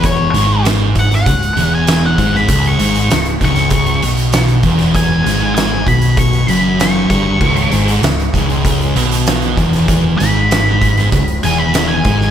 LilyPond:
<<
  \new Staff \with { instrumentName = "Lead electric guitar" } { \time 4/4 \key cis \minor \tempo 4 = 97 cis''4 r8 fis''16 fis''4 gis''8 fis''8 b''16~ | b''16 cis'''4~ cis'''16 cis'''2 r8 | gis''4 gis''8 b''8 cis'''8 b''8 cis'''8 cis'''8~ | cis'''2~ cis'''8 r4. |
r8 b''2 gis''16 b''8 gis''8. | }
  \new Staff \with { instrumentName = "Synth drone" } { \clef bass \time 4/4 \key cis \minor <cis dis gis>1~ | <cis dis gis>1~ | <cis dis gis>1~ | <cis dis gis>1~ |
<cis dis gis>1 | }
  \new Staff \with { instrumentName = "Distorted electric guitar" } { \clef bass \time 4/4 \key cis \minor e,8 gis,4. cis,8 e,4 gis,8 | cis,8 gis,8 cis,8 cis,4 b,4 e,8~ | e,8 gis,4 b,4 fis,4 g,8 | cis,8 gis,8 cis,8 cis,4 b,4 e,8~ |
e,8 gis,4. cis,8 e,4 gis,8 | }
  \new Staff \with { instrumentName = "Distorted electric guitar" } { \clef bass \time 4/4 \key cis \minor e,8 gis,4. cis,8 e,4 gis,8 | cis,8 gis,8 cis,8 cis,4 b,4 e,8~ | e,8 gis,4 b,4 fis,4 g,8 | cis,8 gis,8 cis,8 cis,4 b,4 e,8~ |
e,8 gis,4. cis,8 e,4 gis,8 | }
  \new Staff \with { instrumentName = "Fingered electric bass" } { \clef bass \time 4/4 \key cis \minor e,,8 gis,,4. cis,,8 e,,4 gis,,8 | cis,,8 gis,,8 cis,,8 cis,,4 b,,4 e,,8~ | e,,8 gis,,4 b,,4 fis,,4 g,,8 | cis,,8 gis,,8 cis,,8 cis,,4 b,,4 e,,8~ |
e,,8 gis,,4. cis,,8 e,,4 gis,,8 | }
  \new DrumStaff \with { instrumentName = "Drums" } \drummode { \time 4/4 <hh bd>8 <hh sn>8 <hh sn>8 <hh bd>16 <hh sn>16 <hh bd>16 hh16 hh8 <hh sn>8 <hh bd>16 sn16 | <hh bd>16 hh16 hh16 hh16 <hh sn>16 hh16 <hh bd>16 <hh sn>16 <hh bd>16 hh16 hh16 hh16 <hh sn>16 hh16 <hh bd>16 <hh sn>16 | <hh bd>8 <hh sn>8 <hh sn>8 <hh bd>16 hh16 <hh bd>16 hh16 hh8 <hh sn>8 <hh bd>8 | <cymc bd>16 hh16 <hh sn>16 hh16 <hh sn>16 hh16 <hh bd>16 hh16 <hh bd>16 hh16 hh16 hh16 <hh sn>16 hh16 <hh bd>16 <hh sn>16 |
<hh bd>8 <hh sn>8 <hh sn>8 <hh bd>16 <hh sn>16 <hh bd>16 hh16 hh8 <hh sn>8 <hh bd>16 sn16 | }
>>